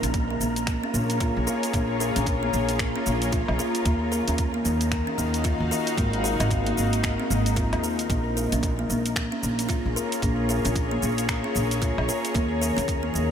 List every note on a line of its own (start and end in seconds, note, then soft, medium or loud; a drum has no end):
0.00 0.37 A#1 loud
0.00 4.72 A#3 medium
0.00 0.14 C#4 medium
0.00 1.33 D#4 medium
0.00 3.86 F4 medium
0.00 0.59 A#4 medium
0.00 8.08 A#4 medium
0.00 4.72 C#5 loud
0.00 8.08 A#5 medium
0.00 closed hi-hat soft
0.00 shaker soft
0.14 kick medium
0.14 closed hi-hat medium
0.14 shaker soft
0.19 4.72 G#4 medium
0.30 0.40 A#3 medium
0.40 0.78 A#1 medium
0.40 0.56 A#3 medium
0.40 shaker medium
0.56 closed hi-hat soft
0.56 shaker soft
0.67 finger snap medium
0.67 kick loud
0.67 closed hi-hat soft
0.67 shaker soft
0.83 0.89 C#4 medium
0.94 1.31 A#1 medium
0.94 1.09 A#3 medium
0.94 shaker medium
1.10 closed hi-hat soft
1.10 shaker soft
1.20 1.46 F4 medium
1.20 kick loud
1.20 closed hi-hat medium
1.20 shaker soft
1.37 1.45 A#1 medium
1.47 1.62 A#4 medium
1.47 shaker medium
1.63 closed hi-hat soft
1.63 shaker soft
1.73 2.11 A#1 medium
1.73 1.99 A#3 medium
1.73 kick loud
1.73 closed hi-hat medium
1.73 shaker soft
2.00 2.14 A#4 medium
2.00 shaker medium
2.16 2.50 A#1 medium
2.16 2.26 C#4 medium
2.16 closed hi-hat soft
2.16 shaker soft
2.26 kick medium
2.26 closed hi-hat medium
2.26 shaker soft
2.43 2.52 A#3 medium
2.54 2.91 A#1 medium
2.54 2.68 A#3 medium
2.54 shaker medium
2.69 closed hi-hat soft
2.69 shaker soft
2.79 finger snap medium
2.79 kick loud
2.79 closed hi-hat medium
2.79 shaker soft
2.96 3.02 C#4 medium
3.06 3.44 A#1 medium
3.06 3.21 A#3 medium
3.06 shaker medium
3.22 closed hi-hat soft
3.22 shaker soft
3.32 3.58 F4 medium
3.32 kick loud
3.32 closed hi-hat medium
3.32 shaker soft
3.48 3.57 A#1 loud
3.48 low woodblock medium
3.59 3.74 A#4 medium
3.59 shaker medium
3.75 closed hi-hat soft
3.75 shaker soft
3.85 4.23 D#2 loud
3.85 5.98 D#3 medium
3.85 4.11 A#3 medium
3.85 kick loud
3.85 closed hi-hat medium
3.85 shaker soft
3.97 8.81 D#4 medium
4.12 4.26 A#4 medium
4.12 shaker medium
4.28 4.62 D#2 medium
4.28 4.38 C#4 medium
4.28 6.84 F5 medium
4.28 closed hi-hat soft
4.28 shaker soft
4.34 6.84 F#4 medium
4.34 closed hi-hat medium
4.39 kick loud
4.39 shaker soft
4.54 4.64 A#3 medium
4.65 5.03 D#2 medium
4.65 4.80 A#3 medium
4.65 shaker medium
4.81 closed hi-hat soft
4.81 shaker soft
4.92 finger snap medium
4.92 kick loud
4.92 closed hi-hat medium
4.92 shaker soft
5.07 5.14 C#4 medium
5.18 5.56 D#2 medium
5.18 5.33 A#3 medium
5.18 shaker medium
5.34 closed hi-hat soft
5.34 shaker soft
5.44 5.70 F4 medium
5.44 kick medium
5.44 closed hi-hat medium
5.44 shaker soft
5.60 5.69 D#2 loud
5.71 5.86 A#4 medium
5.71 shaker medium
5.87 closed hi-hat soft
5.87 shaker soft
5.97 6.35 G#1 loud
5.97 8.10 G#3 medium
5.97 6.24 A#3 medium
5.97 kick loud
5.97 closed hi-hat medium
5.97 shaker soft
6.13 closed hi-hat soft
6.24 6.39 A#4 medium
6.24 shaker medium
6.40 6.74 G#1 loud
6.40 6.51 C4 medium
6.40 closed hi-hat soft
6.40 low woodblock medium
6.40 shaker soft
6.51 kick medium
6.51 closed hi-hat medium
6.51 shaker soft
6.61 8.80 A#4 medium
6.66 6.76 A#3 medium
6.66 closed hi-hat soft
6.77 7.15 G#1 medium
6.77 6.93 A#3 medium
6.77 shaker medium
6.93 closed hi-hat soft
6.93 shaker soft
7.04 finger snap medium
7.04 kick loud
7.04 closed hi-hat medium
7.04 shaker soft
7.20 7.26 C4 medium
7.30 7.74 G#1 loud
7.30 7.46 A#3 medium
7.30 shaker medium
7.46 closed hi-hat soft
7.46 shaker soft
7.56 7.82 F4 medium
7.56 kick medium
7.56 closed hi-hat medium
7.56 shaker soft
7.73 8.07 D#2 medium
7.73 closed hi-hat soft
7.73 low woodblock medium
7.84 7.99 A#4 medium
7.84 shaker medium
7.99 closed hi-hat soft
7.99 shaker soft
8.09 8.47 A#1 medium
8.09 13.21 A#3 medium
8.09 8.36 A#3 medium
8.09 13.31 A#4 medium
8.09 13.31 A#5 medium
8.09 kick loud
8.09 closed hi-hat medium
8.09 shaker soft
8.37 8.51 A#4 medium
8.37 shaker medium
8.44 13.21 G#4 medium
8.50 8.86 A#1 medium
8.50 8.63 C#4 medium
8.50 12.35 F4 medium
8.50 closed hi-hat soft
8.50 shaker soft
8.63 kick loud
8.63 closed hi-hat medium
8.63 shaker soft
8.79 8.89 A#3 medium
8.84 13.21 C#5 medium
8.90 9.27 A#1 medium
8.90 9.05 A#3 medium
8.90 shaker medium
9.06 closed hi-hat soft
9.06 shaker soft
9.16 finger snap medium
9.16 kick loud
9.16 closed hi-hat medium
9.16 shaker soft
9.32 9.39 C#4 medium
9.43 9.81 A#1 medium
9.43 9.58 A#3 medium
9.43 shaker medium
9.59 closed hi-hat soft
9.59 shaker soft
9.69 9.95 F4 medium
9.69 kick loud
9.69 closed hi-hat medium
9.69 shaker soft
9.86 9.94 A#1 medium
9.96 10.11 A#4 medium
9.96 shaker medium
10.12 closed hi-hat soft
10.12 shaker soft
10.22 10.60 A#1 loud
10.22 10.48 A#3 medium
10.22 kick loud
10.22 closed hi-hat medium
10.22 shaker soft
10.49 10.63 A#4 medium
10.49 shaker medium
10.65 10.99 A#1 loud
10.65 10.75 C#4 medium
10.65 closed hi-hat soft
10.65 shaker soft
10.76 kick loud
10.76 closed hi-hat medium
10.76 shaker soft
10.91 11.01 A#3 medium
11.02 11.40 A#1 medium
11.02 11.17 A#3 medium
11.02 shaker medium
11.18 closed hi-hat soft
11.18 shaker soft
11.29 finger snap medium
11.29 kick loud
11.29 closed hi-hat medium
11.29 shaker soft
11.44 11.51 C#4 medium
11.55 11.93 A#1 medium
11.55 11.70 A#3 medium
11.55 shaker medium
11.71 closed hi-hat soft
11.71 shaker soft
11.82 12.07 F4 medium
11.82 kick loud
11.82 closed hi-hat medium
11.82 shaker soft
11.98 12.07 A#1 loud
11.98 low woodblock medium
12.09 12.24 A#4 medium
12.09 shaker medium
12.25 closed hi-hat soft
12.25 shaker soft
12.34 12.72 D#2 loud
12.34 13.31 D#3 medium
12.34 12.60 A#3 medium
12.34 kick loud
12.34 closed hi-hat soft
12.34 shaker soft
12.52 13.31 D#4 medium
12.62 12.76 A#4 medium
12.62 shaker medium
12.77 13.12 D#2 loud
12.77 12.87 C#4 medium
12.77 closed hi-hat soft
12.77 shaker soft
12.88 kick loud
12.88 closed hi-hat medium
12.88 shaker soft
13.03 13.13 A#3 medium
13.14 13.31 D#2 medium
13.14 13.29 A#3 medium
13.14 shaker medium